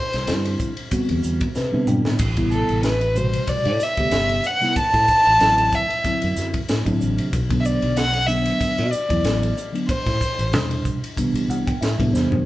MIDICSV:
0, 0, Header, 1, 6, 480
1, 0, Start_track
1, 0, Tempo, 641026
1, 1647, Time_signature, 4, 2, 24, 8
1, 9326, End_track
2, 0, Start_track
2, 0, Title_t, "Violin"
2, 0, Program_c, 0, 40
2, 0, Note_on_c, 0, 72, 92
2, 419, Note_off_c, 0, 72, 0
2, 1888, Note_on_c, 0, 69, 65
2, 2111, Note_off_c, 0, 69, 0
2, 2130, Note_on_c, 0, 71, 68
2, 2372, Note_on_c, 0, 72, 75
2, 2383, Note_off_c, 0, 71, 0
2, 2618, Note_on_c, 0, 74, 88
2, 2629, Note_off_c, 0, 72, 0
2, 2866, Note_on_c, 0, 76, 87
2, 2877, Note_off_c, 0, 74, 0
2, 3348, Note_on_c, 0, 78, 76
2, 3359, Note_off_c, 0, 76, 0
2, 3577, Note_off_c, 0, 78, 0
2, 3584, Note_on_c, 0, 81, 101
2, 4304, Note_on_c, 0, 76, 79
2, 4315, Note_off_c, 0, 81, 0
2, 4775, Note_off_c, 0, 76, 0
2, 5694, Note_on_c, 0, 76, 58
2, 5733, Note_on_c, 0, 74, 75
2, 5744, Note_off_c, 0, 76, 0
2, 5970, Note_on_c, 0, 78, 87
2, 5981, Note_off_c, 0, 74, 0
2, 6190, Note_on_c, 0, 76, 77
2, 6201, Note_off_c, 0, 78, 0
2, 6674, Note_on_c, 0, 74, 79
2, 6685, Note_off_c, 0, 76, 0
2, 7160, Note_off_c, 0, 74, 0
2, 7401, Note_on_c, 0, 72, 95
2, 8094, Note_off_c, 0, 72, 0
2, 9326, End_track
3, 0, Start_track
3, 0, Title_t, "Tine electric piano"
3, 0, Program_c, 1, 4
3, 199, Note_on_c, 1, 50, 58
3, 203, Note_on_c, 1, 55, 59
3, 205, Note_on_c, 1, 62, 56
3, 211, Note_on_c, 1, 60, 52
3, 215, Note_on_c, 1, 64, 66
3, 531, Note_off_c, 1, 50, 0
3, 534, Note_off_c, 1, 55, 0
3, 535, Note_off_c, 1, 62, 0
3, 537, Note_off_c, 1, 60, 0
3, 539, Note_off_c, 1, 64, 0
3, 680, Note_on_c, 1, 50, 73
3, 683, Note_on_c, 1, 55, 70
3, 686, Note_on_c, 1, 59, 70
3, 692, Note_on_c, 1, 60, 64
3, 694, Note_on_c, 1, 66, 81
3, 1092, Note_off_c, 1, 50, 0
3, 1093, Note_off_c, 1, 55, 0
3, 1095, Note_off_c, 1, 59, 0
3, 1098, Note_off_c, 1, 60, 0
3, 1099, Note_off_c, 1, 66, 0
3, 1165, Note_on_c, 1, 71, 64
3, 1287, Note_on_c, 1, 50, 89
3, 1291, Note_on_c, 1, 55, 74
3, 1297, Note_on_c, 1, 59, 72
3, 1300, Note_on_c, 1, 60, 78
3, 1303, Note_on_c, 1, 62, 85
3, 1389, Note_off_c, 1, 71, 0
3, 1406, Note_on_c, 1, 79, 57
3, 1606, Note_off_c, 1, 50, 0
3, 1608, Note_off_c, 1, 55, 0
3, 1611, Note_off_c, 1, 59, 0
3, 1612, Note_off_c, 1, 60, 0
3, 1614, Note_off_c, 1, 62, 0
3, 1629, Note_off_c, 1, 79, 0
3, 1765, Note_on_c, 1, 48, 67
3, 1774, Note_on_c, 1, 55, 65
3, 1777, Note_on_c, 1, 57, 64
3, 1780, Note_on_c, 1, 59, 58
3, 1781, Note_on_c, 1, 64, 84
3, 2165, Note_off_c, 1, 48, 0
3, 2169, Note_off_c, 1, 55, 0
3, 2171, Note_off_c, 1, 57, 0
3, 2172, Note_off_c, 1, 59, 0
3, 2173, Note_off_c, 1, 64, 0
3, 2362, Note_on_c, 1, 48, 72
3, 2368, Note_on_c, 1, 55, 65
3, 2373, Note_on_c, 1, 47, 59
3, 2373, Note_on_c, 1, 57, 61
3, 2378, Note_on_c, 1, 66, 69
3, 2773, Note_off_c, 1, 48, 0
3, 2776, Note_off_c, 1, 55, 0
3, 2778, Note_off_c, 1, 47, 0
3, 2778, Note_off_c, 1, 57, 0
3, 2781, Note_off_c, 1, 66, 0
3, 2978, Note_on_c, 1, 48, 58
3, 2982, Note_on_c, 1, 55, 52
3, 2983, Note_on_c, 1, 57, 54
3, 2984, Note_on_c, 1, 59, 54
3, 2990, Note_on_c, 1, 67, 66
3, 3291, Note_off_c, 1, 48, 0
3, 3293, Note_off_c, 1, 55, 0
3, 3293, Note_off_c, 1, 57, 0
3, 3294, Note_off_c, 1, 59, 0
3, 3297, Note_off_c, 1, 67, 0
3, 3453, Note_on_c, 1, 48, 62
3, 3456, Note_on_c, 1, 55, 58
3, 3458, Note_on_c, 1, 57, 65
3, 3463, Note_on_c, 1, 59, 57
3, 3466, Note_on_c, 1, 64, 70
3, 3564, Note_off_c, 1, 48, 0
3, 3565, Note_off_c, 1, 55, 0
3, 3566, Note_off_c, 1, 57, 0
3, 3569, Note_off_c, 1, 59, 0
3, 3570, Note_off_c, 1, 64, 0
3, 4032, Note_on_c, 1, 50, 62
3, 4038, Note_on_c, 1, 54, 60
3, 4041, Note_on_c, 1, 57, 58
3, 4042, Note_on_c, 1, 60, 53
3, 4046, Note_on_c, 1, 64, 64
3, 4367, Note_off_c, 1, 50, 0
3, 4370, Note_off_c, 1, 54, 0
3, 4372, Note_off_c, 1, 57, 0
3, 4372, Note_off_c, 1, 60, 0
3, 4374, Note_off_c, 1, 64, 0
3, 4522, Note_on_c, 1, 50, 65
3, 4524, Note_on_c, 1, 54, 57
3, 4528, Note_on_c, 1, 57, 62
3, 4532, Note_on_c, 1, 60, 62
3, 4535, Note_on_c, 1, 64, 68
3, 4932, Note_off_c, 1, 50, 0
3, 4933, Note_off_c, 1, 54, 0
3, 4935, Note_off_c, 1, 57, 0
3, 4937, Note_off_c, 1, 60, 0
3, 4938, Note_off_c, 1, 64, 0
3, 5129, Note_on_c, 1, 50, 86
3, 5136, Note_on_c, 1, 54, 72
3, 5138, Note_on_c, 1, 57, 80
3, 5142, Note_on_c, 1, 60, 77
3, 5145, Note_on_c, 1, 62, 89
3, 5446, Note_off_c, 1, 50, 0
3, 5449, Note_off_c, 1, 54, 0
3, 5450, Note_off_c, 1, 57, 0
3, 5452, Note_off_c, 1, 60, 0
3, 5454, Note_off_c, 1, 62, 0
3, 5614, Note_on_c, 1, 50, 76
3, 5617, Note_on_c, 1, 54, 65
3, 5623, Note_on_c, 1, 57, 68
3, 5624, Note_on_c, 1, 59, 70
3, 5630, Note_on_c, 1, 62, 74
3, 6009, Note_off_c, 1, 50, 0
3, 6010, Note_off_c, 1, 54, 0
3, 6013, Note_off_c, 1, 57, 0
3, 6014, Note_off_c, 1, 59, 0
3, 6017, Note_off_c, 1, 62, 0
3, 6193, Note_on_c, 1, 50, 68
3, 6197, Note_on_c, 1, 54, 64
3, 6198, Note_on_c, 1, 57, 68
3, 6203, Note_on_c, 1, 62, 74
3, 6205, Note_on_c, 1, 59, 64
3, 6608, Note_off_c, 1, 50, 0
3, 6610, Note_off_c, 1, 54, 0
3, 6610, Note_off_c, 1, 57, 0
3, 6613, Note_off_c, 1, 62, 0
3, 6614, Note_off_c, 1, 59, 0
3, 6807, Note_on_c, 1, 50, 57
3, 6807, Note_on_c, 1, 54, 62
3, 6814, Note_on_c, 1, 57, 63
3, 6817, Note_on_c, 1, 59, 57
3, 6820, Note_on_c, 1, 64, 70
3, 7125, Note_off_c, 1, 50, 0
3, 7125, Note_off_c, 1, 54, 0
3, 7129, Note_off_c, 1, 57, 0
3, 7130, Note_off_c, 1, 59, 0
3, 7132, Note_off_c, 1, 64, 0
3, 7285, Note_on_c, 1, 50, 69
3, 7288, Note_on_c, 1, 54, 57
3, 7291, Note_on_c, 1, 57, 60
3, 7297, Note_on_c, 1, 59, 61
3, 7302, Note_on_c, 1, 62, 73
3, 7400, Note_off_c, 1, 50, 0
3, 7401, Note_off_c, 1, 54, 0
3, 7403, Note_off_c, 1, 57, 0
3, 7406, Note_off_c, 1, 59, 0
3, 7408, Note_off_c, 1, 62, 0
3, 7880, Note_on_c, 1, 48, 61
3, 7880, Note_on_c, 1, 52, 54
3, 7883, Note_on_c, 1, 55, 63
3, 7889, Note_on_c, 1, 47, 60
3, 7895, Note_on_c, 1, 62, 76
3, 8212, Note_off_c, 1, 48, 0
3, 8212, Note_off_c, 1, 52, 0
3, 8214, Note_off_c, 1, 55, 0
3, 8217, Note_off_c, 1, 47, 0
3, 8220, Note_off_c, 1, 62, 0
3, 8362, Note_on_c, 1, 48, 82
3, 8366, Note_on_c, 1, 52, 72
3, 8369, Note_on_c, 1, 55, 71
3, 8371, Note_on_c, 1, 59, 70
3, 8377, Note_on_c, 1, 62, 82
3, 8611, Note_on_c, 1, 78, 67
3, 8732, Note_off_c, 1, 78, 0
3, 8741, Note_on_c, 1, 79, 64
3, 8774, Note_off_c, 1, 48, 0
3, 8776, Note_off_c, 1, 52, 0
3, 8777, Note_off_c, 1, 55, 0
3, 8778, Note_off_c, 1, 59, 0
3, 8781, Note_off_c, 1, 62, 0
3, 8841, Note_off_c, 1, 79, 0
3, 8844, Note_on_c, 1, 76, 62
3, 8975, Note_on_c, 1, 48, 90
3, 8977, Note_on_c, 1, 52, 76
3, 8981, Note_on_c, 1, 55, 77
3, 8984, Note_on_c, 1, 59, 71
3, 8988, Note_on_c, 1, 62, 83
3, 9069, Note_off_c, 1, 76, 0
3, 9086, Note_on_c, 1, 72, 57
3, 9291, Note_off_c, 1, 48, 0
3, 9292, Note_off_c, 1, 52, 0
3, 9294, Note_off_c, 1, 55, 0
3, 9296, Note_off_c, 1, 59, 0
3, 9298, Note_off_c, 1, 62, 0
3, 9311, Note_off_c, 1, 72, 0
3, 9326, End_track
4, 0, Start_track
4, 0, Title_t, "Fingered electric bass"
4, 0, Program_c, 2, 33
4, 105, Note_on_c, 2, 36, 79
4, 213, Note_on_c, 2, 43, 71
4, 224, Note_off_c, 2, 36, 0
4, 412, Note_off_c, 2, 43, 0
4, 826, Note_on_c, 2, 40, 74
4, 914, Note_off_c, 2, 40, 0
4, 936, Note_on_c, 2, 40, 69
4, 1043, Note_off_c, 2, 40, 0
4, 1173, Note_on_c, 2, 48, 71
4, 1281, Note_off_c, 2, 48, 0
4, 1303, Note_on_c, 2, 48, 75
4, 1392, Note_off_c, 2, 48, 0
4, 1410, Note_on_c, 2, 43, 69
4, 1519, Note_off_c, 2, 43, 0
4, 1539, Note_on_c, 2, 45, 65
4, 1630, Note_off_c, 2, 45, 0
4, 1643, Note_on_c, 2, 33, 94
4, 1957, Note_off_c, 2, 33, 0
4, 2022, Note_on_c, 2, 33, 83
4, 2516, Note_off_c, 2, 33, 0
4, 2739, Note_on_c, 2, 45, 83
4, 2830, Note_off_c, 2, 45, 0
4, 2978, Note_on_c, 2, 38, 68
4, 3069, Note_off_c, 2, 38, 0
4, 3083, Note_on_c, 2, 31, 75
4, 3286, Note_off_c, 2, 31, 0
4, 3697, Note_on_c, 2, 45, 90
4, 3788, Note_off_c, 2, 45, 0
4, 3945, Note_on_c, 2, 33, 69
4, 4033, Note_off_c, 2, 33, 0
4, 4055, Note_on_c, 2, 33, 80
4, 4253, Note_off_c, 2, 33, 0
4, 4671, Note_on_c, 2, 42, 79
4, 4756, Note_off_c, 2, 42, 0
4, 4774, Note_on_c, 2, 42, 78
4, 4881, Note_off_c, 2, 42, 0
4, 5018, Note_on_c, 2, 45, 82
4, 5123, Note_off_c, 2, 45, 0
4, 5137, Note_on_c, 2, 45, 80
4, 5228, Note_off_c, 2, 45, 0
4, 5259, Note_on_c, 2, 33, 77
4, 5364, Note_off_c, 2, 33, 0
4, 5384, Note_on_c, 2, 48, 69
4, 5472, Note_off_c, 2, 48, 0
4, 5493, Note_on_c, 2, 35, 99
4, 5802, Note_off_c, 2, 35, 0
4, 5861, Note_on_c, 2, 35, 87
4, 6355, Note_off_c, 2, 35, 0
4, 6579, Note_on_c, 2, 47, 82
4, 6669, Note_off_c, 2, 47, 0
4, 6817, Note_on_c, 2, 40, 75
4, 6908, Note_off_c, 2, 40, 0
4, 6920, Note_on_c, 2, 33, 82
4, 7125, Note_off_c, 2, 33, 0
4, 7535, Note_on_c, 2, 45, 78
4, 7627, Note_off_c, 2, 45, 0
4, 7779, Note_on_c, 2, 33, 75
4, 7890, Note_off_c, 2, 33, 0
4, 7890, Note_on_c, 2, 40, 75
4, 8091, Note_off_c, 2, 40, 0
4, 8491, Note_on_c, 2, 36, 73
4, 8586, Note_off_c, 2, 36, 0
4, 8606, Note_on_c, 2, 36, 78
4, 8717, Note_off_c, 2, 36, 0
4, 8848, Note_on_c, 2, 45, 69
4, 8959, Note_off_c, 2, 45, 0
4, 8982, Note_on_c, 2, 45, 80
4, 9072, Note_off_c, 2, 45, 0
4, 9087, Note_on_c, 2, 40, 80
4, 9198, Note_off_c, 2, 40, 0
4, 9222, Note_on_c, 2, 42, 71
4, 9313, Note_off_c, 2, 42, 0
4, 9326, End_track
5, 0, Start_track
5, 0, Title_t, "Muted fingered electric bass strokes"
5, 2605, Note_on_c, 9, 29, 33
5, 2680, Note_off_c, 9, 29, 0
5, 3567, Note_on_c, 9, 29, 31
5, 3642, Note_off_c, 9, 29, 0
5, 3804, Note_on_c, 9, 29, 31
5, 3879, Note_off_c, 9, 29, 0
5, 6444, Note_on_c, 9, 29, 35
5, 6519, Note_off_c, 9, 29, 0
5, 7405, Note_on_c, 9, 29, 33
5, 7480, Note_off_c, 9, 29, 0
5, 7646, Note_on_c, 9, 29, 33
5, 7721, Note_off_c, 9, 29, 0
5, 9326, End_track
6, 0, Start_track
6, 0, Title_t, "Drums"
6, 99, Note_on_c, 9, 51, 55
6, 106, Note_on_c, 9, 38, 27
6, 174, Note_off_c, 9, 51, 0
6, 181, Note_off_c, 9, 38, 0
6, 205, Note_on_c, 9, 44, 68
6, 205, Note_on_c, 9, 51, 73
6, 211, Note_on_c, 9, 38, 82
6, 280, Note_off_c, 9, 44, 0
6, 280, Note_off_c, 9, 51, 0
6, 286, Note_off_c, 9, 38, 0
6, 340, Note_on_c, 9, 51, 59
6, 415, Note_off_c, 9, 51, 0
6, 446, Note_on_c, 9, 44, 77
6, 448, Note_on_c, 9, 36, 67
6, 521, Note_off_c, 9, 44, 0
6, 523, Note_off_c, 9, 36, 0
6, 575, Note_on_c, 9, 51, 61
6, 650, Note_off_c, 9, 51, 0
6, 684, Note_on_c, 9, 44, 77
6, 684, Note_on_c, 9, 51, 80
6, 687, Note_on_c, 9, 36, 75
6, 759, Note_off_c, 9, 44, 0
6, 759, Note_off_c, 9, 51, 0
6, 762, Note_off_c, 9, 36, 0
6, 815, Note_on_c, 9, 51, 56
6, 889, Note_off_c, 9, 51, 0
6, 922, Note_on_c, 9, 44, 75
6, 997, Note_off_c, 9, 44, 0
6, 1053, Note_on_c, 9, 51, 65
6, 1057, Note_on_c, 9, 36, 79
6, 1128, Note_off_c, 9, 51, 0
6, 1132, Note_off_c, 9, 36, 0
6, 1160, Note_on_c, 9, 44, 76
6, 1167, Note_on_c, 9, 38, 45
6, 1235, Note_off_c, 9, 44, 0
6, 1242, Note_off_c, 9, 38, 0
6, 1402, Note_on_c, 9, 44, 72
6, 1402, Note_on_c, 9, 45, 68
6, 1477, Note_off_c, 9, 44, 0
6, 1477, Note_off_c, 9, 45, 0
6, 1536, Note_on_c, 9, 38, 72
6, 1611, Note_off_c, 9, 38, 0
6, 1638, Note_on_c, 9, 44, 77
6, 1638, Note_on_c, 9, 49, 76
6, 1638, Note_on_c, 9, 51, 83
6, 1644, Note_on_c, 9, 36, 107
6, 1713, Note_off_c, 9, 44, 0
6, 1713, Note_off_c, 9, 49, 0
6, 1713, Note_off_c, 9, 51, 0
6, 1719, Note_off_c, 9, 36, 0
6, 1772, Note_on_c, 9, 51, 59
6, 1776, Note_on_c, 9, 36, 67
6, 1847, Note_off_c, 9, 51, 0
6, 1851, Note_off_c, 9, 36, 0
6, 1882, Note_on_c, 9, 44, 69
6, 1957, Note_off_c, 9, 44, 0
6, 2012, Note_on_c, 9, 51, 45
6, 2087, Note_off_c, 9, 51, 0
6, 2120, Note_on_c, 9, 44, 64
6, 2120, Note_on_c, 9, 51, 62
6, 2127, Note_on_c, 9, 38, 96
6, 2195, Note_off_c, 9, 44, 0
6, 2195, Note_off_c, 9, 51, 0
6, 2202, Note_off_c, 9, 38, 0
6, 2255, Note_on_c, 9, 51, 53
6, 2330, Note_off_c, 9, 51, 0
6, 2361, Note_on_c, 9, 44, 65
6, 2436, Note_off_c, 9, 44, 0
6, 2496, Note_on_c, 9, 51, 57
6, 2571, Note_off_c, 9, 51, 0
6, 2601, Note_on_c, 9, 44, 75
6, 2601, Note_on_c, 9, 51, 72
6, 2604, Note_on_c, 9, 36, 70
6, 2676, Note_off_c, 9, 44, 0
6, 2676, Note_off_c, 9, 51, 0
6, 2679, Note_off_c, 9, 36, 0
6, 2735, Note_on_c, 9, 51, 51
6, 2810, Note_off_c, 9, 51, 0
6, 2843, Note_on_c, 9, 44, 82
6, 2918, Note_off_c, 9, 44, 0
6, 2974, Note_on_c, 9, 51, 54
6, 2976, Note_on_c, 9, 36, 76
6, 3049, Note_off_c, 9, 51, 0
6, 3051, Note_off_c, 9, 36, 0
6, 3080, Note_on_c, 9, 44, 72
6, 3080, Note_on_c, 9, 51, 61
6, 3087, Note_on_c, 9, 38, 88
6, 3155, Note_off_c, 9, 44, 0
6, 3155, Note_off_c, 9, 51, 0
6, 3162, Note_off_c, 9, 38, 0
6, 3213, Note_on_c, 9, 51, 52
6, 3288, Note_off_c, 9, 51, 0
6, 3321, Note_on_c, 9, 44, 73
6, 3396, Note_off_c, 9, 44, 0
6, 3456, Note_on_c, 9, 51, 45
6, 3462, Note_on_c, 9, 38, 28
6, 3530, Note_off_c, 9, 51, 0
6, 3537, Note_off_c, 9, 38, 0
6, 3565, Note_on_c, 9, 44, 82
6, 3565, Note_on_c, 9, 51, 75
6, 3566, Note_on_c, 9, 36, 98
6, 3639, Note_off_c, 9, 44, 0
6, 3639, Note_off_c, 9, 51, 0
6, 3641, Note_off_c, 9, 36, 0
6, 3698, Note_on_c, 9, 51, 51
6, 3699, Note_on_c, 9, 36, 62
6, 3705, Note_on_c, 9, 38, 27
6, 3773, Note_off_c, 9, 51, 0
6, 3774, Note_off_c, 9, 36, 0
6, 3780, Note_off_c, 9, 38, 0
6, 3806, Note_on_c, 9, 44, 72
6, 3807, Note_on_c, 9, 36, 67
6, 3881, Note_off_c, 9, 44, 0
6, 3882, Note_off_c, 9, 36, 0
6, 3936, Note_on_c, 9, 51, 48
6, 4011, Note_off_c, 9, 51, 0
6, 4046, Note_on_c, 9, 44, 75
6, 4046, Note_on_c, 9, 51, 62
6, 4052, Note_on_c, 9, 38, 84
6, 4121, Note_off_c, 9, 44, 0
6, 4121, Note_off_c, 9, 51, 0
6, 4127, Note_off_c, 9, 38, 0
6, 4179, Note_on_c, 9, 51, 56
6, 4254, Note_off_c, 9, 51, 0
6, 4287, Note_on_c, 9, 44, 73
6, 4288, Note_on_c, 9, 36, 68
6, 4362, Note_off_c, 9, 44, 0
6, 4363, Note_off_c, 9, 36, 0
6, 4420, Note_on_c, 9, 51, 55
6, 4494, Note_off_c, 9, 51, 0
6, 4526, Note_on_c, 9, 44, 78
6, 4526, Note_on_c, 9, 51, 76
6, 4528, Note_on_c, 9, 36, 75
6, 4601, Note_off_c, 9, 44, 0
6, 4601, Note_off_c, 9, 51, 0
6, 4603, Note_off_c, 9, 36, 0
6, 4655, Note_on_c, 9, 51, 57
6, 4730, Note_off_c, 9, 51, 0
6, 4765, Note_on_c, 9, 44, 80
6, 4772, Note_on_c, 9, 38, 28
6, 4840, Note_off_c, 9, 44, 0
6, 4847, Note_off_c, 9, 38, 0
6, 4895, Note_on_c, 9, 51, 70
6, 4898, Note_on_c, 9, 36, 73
6, 4970, Note_off_c, 9, 51, 0
6, 4973, Note_off_c, 9, 36, 0
6, 5006, Note_on_c, 9, 44, 72
6, 5006, Note_on_c, 9, 51, 68
6, 5013, Note_on_c, 9, 38, 95
6, 5081, Note_off_c, 9, 44, 0
6, 5081, Note_off_c, 9, 51, 0
6, 5087, Note_off_c, 9, 38, 0
6, 5139, Note_on_c, 9, 36, 61
6, 5139, Note_on_c, 9, 51, 62
6, 5214, Note_off_c, 9, 36, 0
6, 5214, Note_off_c, 9, 51, 0
6, 5248, Note_on_c, 9, 44, 73
6, 5323, Note_off_c, 9, 44, 0
6, 5379, Note_on_c, 9, 51, 61
6, 5454, Note_off_c, 9, 51, 0
6, 5489, Note_on_c, 9, 36, 98
6, 5489, Note_on_c, 9, 44, 78
6, 5489, Note_on_c, 9, 51, 76
6, 5564, Note_off_c, 9, 36, 0
6, 5564, Note_off_c, 9, 44, 0
6, 5564, Note_off_c, 9, 51, 0
6, 5620, Note_on_c, 9, 36, 72
6, 5620, Note_on_c, 9, 51, 61
6, 5695, Note_off_c, 9, 36, 0
6, 5695, Note_off_c, 9, 51, 0
6, 5727, Note_on_c, 9, 44, 72
6, 5802, Note_off_c, 9, 44, 0
6, 5857, Note_on_c, 9, 51, 50
6, 5932, Note_off_c, 9, 51, 0
6, 5965, Note_on_c, 9, 44, 72
6, 5965, Note_on_c, 9, 51, 69
6, 5972, Note_on_c, 9, 38, 85
6, 6040, Note_off_c, 9, 44, 0
6, 6040, Note_off_c, 9, 51, 0
6, 6046, Note_off_c, 9, 38, 0
6, 6092, Note_on_c, 9, 51, 59
6, 6099, Note_on_c, 9, 38, 29
6, 6167, Note_off_c, 9, 51, 0
6, 6174, Note_off_c, 9, 38, 0
6, 6199, Note_on_c, 9, 44, 72
6, 6273, Note_off_c, 9, 44, 0
6, 6332, Note_on_c, 9, 51, 60
6, 6407, Note_off_c, 9, 51, 0
6, 6445, Note_on_c, 9, 36, 74
6, 6445, Note_on_c, 9, 44, 75
6, 6445, Note_on_c, 9, 51, 74
6, 6519, Note_off_c, 9, 36, 0
6, 6520, Note_off_c, 9, 44, 0
6, 6520, Note_off_c, 9, 51, 0
6, 6577, Note_on_c, 9, 51, 51
6, 6652, Note_off_c, 9, 51, 0
6, 6683, Note_on_c, 9, 44, 79
6, 6758, Note_off_c, 9, 44, 0
6, 6816, Note_on_c, 9, 36, 80
6, 6816, Note_on_c, 9, 51, 62
6, 6891, Note_off_c, 9, 36, 0
6, 6891, Note_off_c, 9, 51, 0
6, 6923, Note_on_c, 9, 44, 73
6, 6923, Note_on_c, 9, 51, 66
6, 6929, Note_on_c, 9, 38, 89
6, 6998, Note_off_c, 9, 44, 0
6, 6998, Note_off_c, 9, 51, 0
6, 7004, Note_off_c, 9, 38, 0
6, 7062, Note_on_c, 9, 51, 55
6, 7137, Note_off_c, 9, 51, 0
6, 7169, Note_on_c, 9, 44, 70
6, 7244, Note_off_c, 9, 44, 0
6, 7304, Note_on_c, 9, 51, 47
6, 7379, Note_off_c, 9, 51, 0
6, 7405, Note_on_c, 9, 36, 96
6, 7407, Note_on_c, 9, 44, 85
6, 7407, Note_on_c, 9, 51, 73
6, 7480, Note_off_c, 9, 36, 0
6, 7481, Note_off_c, 9, 44, 0
6, 7481, Note_off_c, 9, 51, 0
6, 7537, Note_on_c, 9, 36, 66
6, 7540, Note_on_c, 9, 51, 52
6, 7546, Note_on_c, 9, 38, 28
6, 7612, Note_off_c, 9, 36, 0
6, 7615, Note_off_c, 9, 51, 0
6, 7621, Note_off_c, 9, 38, 0
6, 7646, Note_on_c, 9, 36, 73
6, 7649, Note_on_c, 9, 44, 68
6, 7720, Note_off_c, 9, 36, 0
6, 7724, Note_off_c, 9, 44, 0
6, 7781, Note_on_c, 9, 51, 52
6, 7856, Note_off_c, 9, 51, 0
6, 7885, Note_on_c, 9, 44, 66
6, 7885, Note_on_c, 9, 51, 73
6, 7892, Note_on_c, 9, 38, 84
6, 7960, Note_off_c, 9, 44, 0
6, 7960, Note_off_c, 9, 51, 0
6, 7967, Note_off_c, 9, 38, 0
6, 8019, Note_on_c, 9, 51, 58
6, 8093, Note_off_c, 9, 51, 0
6, 8126, Note_on_c, 9, 36, 64
6, 8128, Note_on_c, 9, 44, 80
6, 8201, Note_off_c, 9, 36, 0
6, 8203, Note_off_c, 9, 44, 0
6, 8265, Note_on_c, 9, 51, 63
6, 8340, Note_off_c, 9, 51, 0
6, 8367, Note_on_c, 9, 36, 71
6, 8371, Note_on_c, 9, 44, 78
6, 8371, Note_on_c, 9, 51, 74
6, 8442, Note_off_c, 9, 36, 0
6, 8445, Note_off_c, 9, 44, 0
6, 8445, Note_off_c, 9, 51, 0
6, 8502, Note_on_c, 9, 51, 57
6, 8577, Note_off_c, 9, 51, 0
6, 8612, Note_on_c, 9, 44, 87
6, 8687, Note_off_c, 9, 44, 0
6, 8742, Note_on_c, 9, 36, 78
6, 8746, Note_on_c, 9, 51, 64
6, 8817, Note_off_c, 9, 36, 0
6, 8820, Note_off_c, 9, 51, 0
6, 8854, Note_on_c, 9, 44, 70
6, 8854, Note_on_c, 9, 51, 72
6, 8861, Note_on_c, 9, 38, 85
6, 8929, Note_off_c, 9, 44, 0
6, 8929, Note_off_c, 9, 51, 0
6, 8936, Note_off_c, 9, 38, 0
6, 8983, Note_on_c, 9, 36, 66
6, 8986, Note_on_c, 9, 51, 63
6, 9058, Note_off_c, 9, 36, 0
6, 9061, Note_off_c, 9, 51, 0
6, 9097, Note_on_c, 9, 44, 73
6, 9104, Note_on_c, 9, 38, 47
6, 9172, Note_off_c, 9, 44, 0
6, 9178, Note_off_c, 9, 38, 0
6, 9226, Note_on_c, 9, 43, 70
6, 9300, Note_off_c, 9, 43, 0
6, 9326, End_track
0, 0, End_of_file